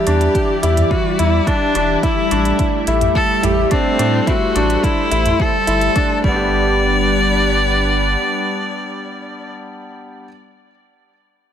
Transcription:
Already playing: analog synth pad E3 G3 E4 D5, viola G4
0.07 sub bass E2, grand piano D4, closed hi-hat
0.21 closed hi-hat
0.35 kick, closed hi-hat
0.63 sub bass E2, grand piano E4, closed hi-hat
0.77 closed hi-hat, mid tom
0.90 viola F#4, kick
1.19 sub bass E2, grand piano E4, viola E4, closed hi-hat
1.47 grand piano D4, viola D4, kick, closed hi-hat
1.75 sub bass E1, grand piano D4, closed hi-hat
2.03 analog synth pad A3, grand piano E4, viola E4, kick, closed hi-hat
2.31 sub bass A1, grand piano D4, closed hi-hat
2.45 closed hi-hat
2.59 kick, closed hi-hat
2.87 sub bass A1, grand piano E4, closed hi-hat
3.01 analog synth pad C5, closed hi-hat, mid tom
3.15 viola A4, kick
3.43 sub bass A1, grand piano E4, viola G4, closed hi-hat, mid tom
3.71 viola C4, grand piano D4, kick, closed hi-hat
3.99 sub bass A2, grand piano D4, closed hi-hat
4.27 grand piano E4, viola F#4, kick, closed hi-hat
4.56 sub bass A1, grand piano D4, closed hi-hat
4.70 closed hi-hat
4.84 viola E4, kick, closed hi-hat
5.11 sub bass A1, grand piano E4, closed hi-hat
5.26 closed hi-hat, mid tom
5.40 viola A4, kick
5.67 sub bass G1, grand piano E4, closed hi-hat
5.81 closed hi-hat
5.96 grand piano D4, kick, closed hi-hat
6.23 sub bass G1, analog synth pad G3, grand piano G3, viola D5, kick
6.28 grand piano B3 D4, analog synth pad D4
6.36 grand piano G4
6.68 analog synth pad F#5
6.76 analog synth pad B4

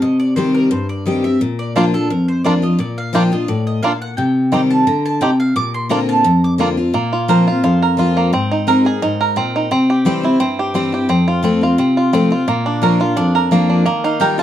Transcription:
0.02 steel-string acoustic guitar C3, mandolin D#5
0.20 mandolin D5
0.36 steel-string acoustic guitar D#3 G3 C4 G4, mandolin C5
0.54 mandolin A#4
0.71 steel-string acoustic guitar G2, mandolin C5
0.89 mandolin D5
1.06 steel-string acoustic guitar D#3 G3 C4 G4, mandolin D#5
1.24 steel-string acoustic guitar C4 G4, mandolin E5
1.41 steel-string acoustic guitar A#2
1.59 mandolin D5
1.76 steel-string acoustic guitar F3 A#3 D4 F4, five-string banjo A#3 D4 F4, mandolin C5
1.94 steel-string acoustic guitar D4 F4, mandolin A4
2.10 steel-string acoustic guitar F2, mandolin A#4
2.28 mandolin C5
2.44 steel-string acoustic guitar F3 A#3 D4 F4, five-string banjo A#3 D4 F4, mandolin D5
2.62 steel-string acoustic guitar D4 F4, mandolin D#5
2.79 steel-string acoustic guitar A#2, mandolin D5
2.98 mandolin F5
3.13 steel-string acoustic guitar F3 A#3 D4 F4, five-string banjo A#3 D4 F4, mandolin G5
3.32 steel-string acoustic guitar D4 F4, mandolin D#5
3.48 steel-string acoustic guitar A2, mandolin D5
3.67 mandolin D#5
3.83 steel-string acoustic guitar A#2, five-string banjo A#3 D4 F4, mandolin F5
4.02 mandolin F#5
4.17 steel-string acoustic guitar C3, mandolin G5
4.52 steel-string acoustic guitar D#3 G3 C4 G4, five-string banjo C4 D#4 G4
4.70 mandolin A5
4.87 steel-string acoustic guitar D3, mandolin A#5
5.06 mandolin A5
5.21 steel-string acoustic guitar C3, five-string banjo C4 D#4 G4, mandolin G5
5.40 mandolin F5
5.56 steel-string acoustic guitar A#2, mandolin D6
5.74 mandolin C6
5.89 steel-string acoustic guitar D3 A#3 C4 F4, five-string banjo A#3 D4 F4, mandolin A#5
6.09 mandolin A5
6.24 steel-string acoustic guitar F2, mandolin A#5
6.44 mandolin D6
6.58 steel-string acoustic guitar D3 A#3 C4 F4, five-string banjo A#3 D4 F4
6.77 steel-string acoustic guitar C4 F4
6.94 steel-string acoustic guitar A#2, five-string banjo A#3
7.13 five-string banjo F4
7.28 steel-string acoustic guitar F3 A#3 C4 F4, five-string banjo A#4, mandolin C5
7.47 steel-string acoustic guitar C4 F4, five-string banjo F4
7.64 steel-string acoustic guitar F2, five-string banjo F4, mandolin C5
7.82 five-string banjo A#4
7.97 steel-string acoustic guitar F3 A#3 C4 F4, five-string banjo F4
8.17 five-string banjo A#3
8.33 steel-string acoustic guitar G#2, five-string banjo C4
8.51 five-string banjo D#4
8.67 steel-string acoustic guitar G#3 C4 D#4 G#4, five-string banjo A#4
8.85 steel-string acoustic guitar D#4 G#4, five-string banjo G#4
9.02 steel-string acoustic guitar G#2, five-string banjo D#4
9.21 five-string banjo A#4
9.36 steel-string acoustic guitar A#2, five-string banjo C4
9.56 five-string banjo D#4
9.71 steel-string acoustic guitar C3, five-string banjo C4
9.90 five-string banjo G4
10.05 steel-string acoustic guitar E3 G3 C4 E4, five-string banjo C4, mandolin C5
10.23 steel-string acoustic guitar C4 E4, five-string banjo E4
10.40 steel-string acoustic guitar G2, five-string banjo C4, mandolin C5
10.59 five-string banjo G4
10.74 steel-string acoustic guitar E3 G3 C4 E4, five-string banjo C4
10.92 steel-string acoustic guitar C4 E4, five-string banjo G4
11.09 steel-string acoustic guitar F2, five-string banjo C4
11.28 five-string banjo F4
11.43 steel-string acoustic guitar F3 A3 C4 F4, five-string banjo C4
11.61 steel-string acoustic guitar C4 F4, five-string banjo F4
11.78 steel-string acoustic guitar C3, five-string banjo C4
11.97 five-string banjo F4
12.13 steel-string acoustic guitar F3 A3 C4 F4, five-string banjo C4
12.31 steel-string acoustic guitar C4 F4, five-string banjo F4
12.48 steel-string acoustic guitar A#2, five-string banjo A#3
12.66 five-string banjo D4
12.82 steel-string acoustic guitar F3 A#3 D4 F4, five-string banjo A#4, mandolin C#5
13.00 steel-string acoustic guitar D4 F4, five-string banjo F4
13.16 steel-string acoustic guitar F2, five-string banjo D4, mandolin D5
13.35 five-string banjo A#4
13.51 steel-string acoustic guitar F3 A#3 D4 F4, five-string banjo A#3
13.70 five-string banjo D4
13.86 steel-string acoustic guitar D#3, five-string banjo A#3
14.04 five-string banjo D#4, mandolin F5
14.20 steel-string acoustic guitar D#3 G3 D#4 F4, five-string banjo A#4, mandolin G5
14.38 steel-string acoustic guitar D#4 F4, five-string banjo F4, mandolin A5

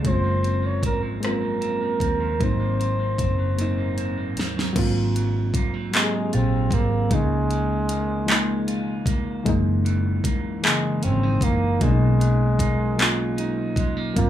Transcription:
Already playing: clean electric guitar C#3 F3 B3
0.03 fingered electric bass F#1, clean electric guitar F#2 C4, reed electric piano G#3 A#3, kick, closed hi-hat
0.07 reed electric piano C4 F4, flugelhorn C5
0.24 clean electric guitar A#3
0.43 clean electric guitar C4, closed hi-hat
0.62 clean electric guitar A#3, flugelhorn C#5
0.83 fingered electric bass G#1, clean electric guitar C4, flugelhorn A#4, kick, closed hi-hat
1.03 clean electric guitar F3
1.20 clean electric guitar F#2 C4, reed electric piano G#3 A#3 C4, closed hi-hat
1.25 reed electric piano F4, flugelhorn A#4, cross-stick
1.41 clean electric guitar A#3
1.61 clean electric guitar C4, closed hi-hat
1.81 clean electric guitar A#3
2.00 fingered electric bass D#2, clean electric guitar C4, kick, closed hi-hat
2.20 clean electric guitar F3
2.38 fingered electric bass G#1, clean electric guitar G#2 C4, reed electric piano F#3 A#3 C4, kick, closed hi-hat
2.43 reed electric piano D#4, flugelhorn C5
2.60 clean electric guitar A#3
2.79 clean electric guitar C4, closed hi-hat
2.99 clean electric guitar A#3
3.18 fingered electric bass F#1, clean electric guitar C4, kick, closed hi-hat
3.38 clean electric guitar F#3
3.56 clean electric guitar G#2 C4, reed electric piano F#3 A#3 C4, closed hi-hat
3.61 reed electric piano D#4
3.78 clean electric guitar A#3
3.98 clean electric guitar C4, closed hi-hat
4.17 clean electric guitar A#3
4.37 fingered electric bass D#2, clean electric guitar C4, snare, closed hi-hat
4.57 clean electric guitar F#3, snare
4.73 fingered electric bass G#1, clean electric guitar G#2, reed electric piano F#3 A#3 C4, kick, closed hi-hat, crash
4.79 reed electric piano F4
5.15 clean electric guitar F#3, closed hi-hat
5.54 clean electric guitar A#3, muted fingered electric bass stroke, kick, closed hi-hat
5.74 clean electric guitar C4
5.91 reed electric piano F#3 A#3 C4, clean electric guitar F#3, flugelhorn G#3, clap, closed hi-hat
5.97 reed electric piano G4
6.03 reed electric piano G#4
6.33 fingered electric bass A#1, flugelhorn C4, clean electric guitar F4, closed hi-hat
6.71 fingered electric bass G#1, flugelhorn A#3, clean electric guitar C4, kick, closed hi-hat
7.09 fingered electric bass C#2, clean electric guitar C#3, reed electric piano F3 G#3 A#3, kick, closed hi-hat
7.14 flugelhorn G#3, reed electric piano D#4
7.50 clean electric guitar G#3, closed hi-hat
7.89 clean electric guitar A#3, closed hi-hat
8.26 reed electric piano F3 G#3, clean electric guitar G#3, clap, closed hi-hat
8.31 reed electric piano A#3 D#4
8.68 clean electric guitar F4, closed hi-hat
9.06 clean electric guitar A#3, kick, closed hi-hat
9.44 fingered electric bass F#1, clean electric guitar F#2, reed electric piano E3 G#3 A#3, kick, closed hi-hat
9.49 reed electric piano D#4
9.85 clean electric guitar E3, closed hi-hat
10.24 clean electric guitar A#3, muted fingered electric bass stroke, kick, closed hi-hat
10.61 reed electric piano E3 G#3 A#3, clean electric guitar E3, flugelhorn G#3, clap, closed hi-hat
10.67 reed electric piano C#3
11.03 fingered electric bass G#1, flugelhorn C4, clean electric guitar C#4, closed hi-hat
11.23 clean electric guitar D#4
11.41 fingered electric bass F#1, clean electric guitar A#3, flugelhorn A#3, kick, closed hi-hat
11.79 fingered electric bass B1, clean electric guitar B2, reed electric piano F#3 A#3 C#4, flugelhorn G#3, kick, closed hi-hat
11.85 reed electric piano D4
11.91 reed electric piano D#4
12.20 clean electric guitar F#3, closed hi-hat
12.59 clean electric guitar A#3, kick, closed hi-hat
12.96 reed electric piano F#3 A#3, clean electric guitar F#3, closed hi-hat
13.01 reed electric piano C#4 F4, clap
13.38 clean electric guitar D#4, closed hi-hat
13.76 clean electric guitar G#3, kick, closed hi-hat
13.97 clean electric guitar A#3
14.13 fingered electric bass G#1, clean electric guitar G#2, reed electric piano F#3 A#3, flugelhorn A#3, kick, closed hi-hat
14.18 reed electric piano C4 F4

